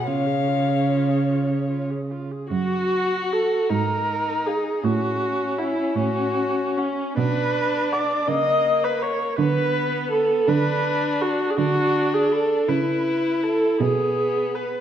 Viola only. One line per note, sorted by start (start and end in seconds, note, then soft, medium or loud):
0.06 0.28 F4 medium
0.26 0.49 G#4 soft
0.48 0.70 F4 medium
0.68 0.87 G#4 soft
0.88 1.11 F4 soft
1.09 1.31 G#4 medium
1.30 1.52 F4 medium
1.50 1.69 G#4 soft
1.70 1.92 F4 soft
1.90 2.12 G#4 soft
2.11 2.33 F4 soft
2.31 2.50 G#4 medium
2.51 3.33 F#4 loud
3.32 3.70 A4 medium
3.71 4.48 A#4 loud
4.46 4.86 G#4 medium
4.84 5.60 F#4 loud
5.58 5.98 E4 medium
5.96 6.79 F#4 loud
6.77 7.17 C#4 medium
7.18 7.94 B4 loud
7.92 8.29 D5 medium
8.28 8.85 D#5 loud
8.84 9.04 B4 loud
9.02 9.38 C#5 loud
9.38 10.10 B4 loud
10.11 10.50 A4 loud
10.48 11.23 B4 loud
11.21 11.52 F#4 loud
11.50 11.58 G#4 medium
11.57 12.15 F#4 loud
12.14 12.33 G#4 medium
12.32 12.71 A4 medium
12.69 13.45 B4 medium
13.43 13.80 A4 medium
13.81 14.56 G#4 loud
14.55 14.81 B4 medium